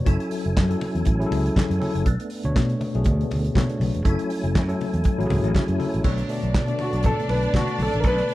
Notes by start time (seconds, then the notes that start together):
0.05 F#1 F#3 C#4 E4 A4 G#5, kick, closed hi-hat
0.20 closed hi-hat
0.31 open hi-hat
0.45 F#1, closed hi-hat
0.57 F#2, kick, snare, clap, high conga
0.68 F#3 C#4 E4 A4, closed hi-hat
0.81 open hi-hat, muted conga
0.95 E2, closed hi-hat
1.05 A1, kick, closed hi-hat, muted conga
1.19 F#3 C#4 E4 G#4, closed hi-hat
1.26 A4
1.31 C#2, open hi-hat, muted conga
1.46 closed hi-hat
1.56 muted fingered electric bass stroke, kick, snare, clap, high conga
1.70 F#2, closed hi-hat
1.80 F#3 C#4 E4 A4, open hi-hat, high conga
1.95 F#1, closed hi-hat
2.06 B1 A3 B3 D4, kick, closed hi-hat
2.20 closed hi-hat
2.30 open hi-hat
2.43 D2 B2 A3 D4 C#5, closed hi-hat
2.56 B2, kick, snare, clap, high conga
2.70 closed hi-hat
2.81 open hi-hat, muted conga
2.94 B1 B2 A3 D4 G#4, closed hi-hat
3.04 D2, kick, closed hi-hat, muted conga
3.21 closed hi-hat
3.31 D2, open hi-hat, muted conga
3.44 closed hi-hat
3.55 B2 A3 D4 C#5, kick, snare, clap, high conga
3.70 closed hi-hat
3.80 B1, open hi-hat, high conga
3.94 E1, closed hi-hat
4.04 F#1 F#3 A3 C#4 E4 A4 G#5, kick, closed hi-hat
4.19 closed hi-hat
4.30 open hi-hat
4.44 F#1, closed hi-hat
4.55 F#2, kick, snare, clap, high conga
4.68 F#3 C#4 E4 A4, closed hi-hat
4.81 open hi-hat, muted conga
4.94 E2, closed hi-hat
5.04 kick, closed hi-hat, muted conga
5.18 A1 F#3 C#4 E4 F#4, closed hi-hat
5.26 C#2 G#4
5.30 open hi-hat, muted conga, low conga
5.44 A1, closed hi-hat
5.54 kick, snare, clap, high conga
5.68 F#2, closed hi-hat
5.78 F#3 C#4 E4 A4, open hi-hat, high conga
5.94 A1, closed hi-hat
6.03 B1 B2 D3 A3 B3 D4 C#5 D5, kick, crash
6.18 closed hi-hat
6.28 B2 A3 D4 D5, open hi-hat
6.42 B1, closed hi-hat
6.54 B2, kick, snare, clap, high conga
6.67 B2 A3 D4 D5, closed hi-hat
6.79 F#4, open hi-hat, muted conga
6.93 B1, closed hi-hat
7.03 A4, kick, closed hi-hat, low conga
7.20 closed hi-hat
7.28 B1 B4, open hi-hat, muted conga
7.43 closed hi-hat
7.54 B2 F#4, kick, snare, clap, high conga
7.68 closed hi-hat
7.78 B1, open hi-hat, high conga
7.82 A4
7.93 A1, closed hi-hat
8.00 B1 A#4, kick, closed hi-hat
8.07 B4
8.16 B2 A3 D4 D5, closed hi-hat
8.29 open hi-hat